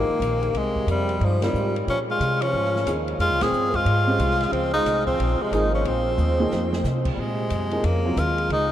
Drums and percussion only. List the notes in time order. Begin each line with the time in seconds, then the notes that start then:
0.22 hi-hat pedal, ride
0.43 ride
0.55 ride
0.76 kick
0.88 hi-hat pedal, ride
1.09 ride
1.21 ride
1.42 snare, ride
1.55 hi-hat pedal
1.76 ride
1.88 ride
2.21 hi-hat pedal, ride
2.42 ride
2.65 snare
2.76 snare
2.87 hi-hat pedal, ride
3.08 ride
3.20 ride
3.41 snare, ride
3.53 hi-hat pedal
3.74 kick, ride
3.86 ride
4.20 hi-hat pedal, ride
4.30 snare
4.41 snare, ride
4.53 ride
4.86 snare, hi-hat pedal, ride
5.07 kick
5.20 ride
5.53 hi-hat pedal, ride
5.85 ride
6.18 hi-hat pedal, high tom
6.40 high tom
6.51 snare
6.73 snare
6.84 snare, hi-hat pedal
7.05 kick, crash
7.50 hi-hat pedal, ride
7.71 ride
7.84 ride
8.17 hi-hat pedal, ride
8.38 ride
8.50 ride